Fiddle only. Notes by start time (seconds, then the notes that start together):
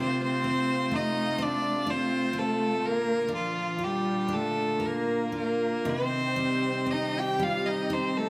0.00 C5
0.23 C5
0.95 D#5
1.42 D5
1.90 C5
2.38 A4
2.85 A#4
3.35 F4
3.84 G4
4.33 A4
4.86 A#4
5.37 A#4
5.89 C5
6.91 D#5
7.18 G5
7.43 F5
7.66 D#5
7.93 C5
8.17 A4